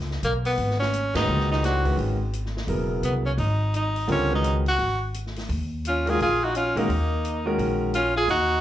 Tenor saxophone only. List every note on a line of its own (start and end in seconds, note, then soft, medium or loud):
0.24 0.34 A#3 medium
0.46 0.78 B3 medium
0.79 1.12 C#4 medium
1.16 1.48 D#4 medium
1.51 1.63 D#4 medium
1.65 1.97 F#4 medium
3.04 3.14 B3 medium
3.26 3.32 C#4 medium
3.39 3.71 D#4 medium
3.76 4.07 D#4 medium
4.12 4.32 C#4 medium
4.35 4.55 D#4 medium
4.68 5.00 F#4 medium
5.87 6.11 F4 medium
6.10 6.21 G#4 medium
6.22 6.44 G#4 medium
6.43 6.55 F#4 medium
6.57 6.80 F4 medium
6.79 7.47 D#4 medium
7.95 8.15 F4 medium
8.17 8.29 G#4 medium
8.31 8.61 F#4 loud